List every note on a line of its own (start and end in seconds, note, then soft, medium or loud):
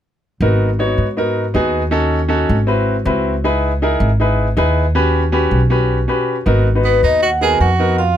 0.41 0.94 G#1 medium
0.41 0.68 B3 medium
0.41 0.68 D#4 medium
0.41 0.68 F#4 medium
0.41 0.68 A#4 medium
0.79 1.06 B3 medium
0.79 1.06 D#4 medium
0.79 1.06 F#4 medium
0.79 1.06 C#5 medium
0.98 1.51 G#2 medium
1.17 1.43 B3 medium
1.17 1.44 D#4 medium
1.17 1.44 F#4 medium
1.17 1.44 A#4 medium
1.54 2.43 D#2 medium
1.54 1.81 B3 medium
1.54 1.81 D#4 medium
1.54 1.81 F#4 medium
1.54 1.82 G#4 medium
1.91 2.18 C#4 medium
1.91 2.18 D#4 medium
1.91 2.19 F#4 medium
1.91 2.19 A4 medium
2.28 2.56 C#4 medium
2.28 2.56 D#4 medium
2.28 2.56 F#4 medium
2.28 2.57 A4 medium
2.49 3.02 G#1 medium
2.67 2.94 C4 medium
2.67 2.94 E4 medium
2.67 2.95 F#4 medium
2.67 2.95 B4 medium
3.05 3.95 C#2 medium
3.05 3.32 C4 medium
3.05 3.33 E4 medium
3.05 3.33 F#4 medium
3.05 3.33 B4 medium
3.44 3.71 D#4 medium
3.44 3.71 E4 medium
3.44 3.71 G#4 medium
3.44 3.71 B4 medium
3.82 4.08 D#4 medium
3.82 4.09 E4 medium
3.82 4.09 G#4 medium
3.82 4.09 A#4 medium
4.00 4.53 G#1 medium
4.20 4.46 D#4 medium
4.20 4.47 E4 medium
4.20 4.47 G#4 medium
4.20 4.47 B4 medium
4.57 5.46 D#2 medium
4.57 4.84 D#4 medium
4.57 4.84 E4 medium
4.57 4.84 G#4 medium
4.57 4.84 B4 medium
4.95 5.22 C#4 medium
4.95 5.22 F#4 medium
4.95 5.22 G4 medium
4.95 5.22 B4 medium
5.32 5.59 C#4 medium
5.32 5.59 F#4 medium
5.32 5.60 G4 medium
5.32 5.60 B4 medium
5.51 6.04 B1 medium
5.70 5.97 C#4 medium
5.70 5.97 F#4 medium
5.70 5.98 G4 medium
5.70 5.98 B4 medium
6.08 6.35 C#4 medium
6.08 6.35 F#4 medium
6.08 6.35 G4 medium
6.08 6.36 B4 medium
6.46 6.99 G#1 medium
6.46 6.66 B3 medium
6.46 6.66 D#4 medium
6.46 6.66 F#4 medium
6.46 6.67 A#4 medium
6.75 7.21 B3 medium
6.75 7.21 D#4 medium
6.75 7.21 F#4 medium
6.75 7.22 B4 medium
6.85 7.02 B3 medium
6.85 7.02 B4 medium
7.03 7.56 D#2 medium
7.03 7.21 D#4 medium
7.03 7.23 D#5 medium
7.22 7.31 F#4 medium
7.22 7.32 F#5 medium
7.41 7.68 B3 medium
7.41 7.68 D#4 medium
7.41 7.68 F#4 medium
7.41 7.59 G#4 medium
7.41 7.68 A#4 medium
7.41 7.61 G#5 medium
7.60 8.17 F2 medium
7.60 7.96 F#4 medium
7.60 7.99 F#5 medium
7.79 7.98 B3 medium
7.79 7.98 D#4 medium
7.79 7.98 F#4 medium
7.79 7.98 A#4 medium
7.99 8.17 F4 medium
7.99 8.17 F5 medium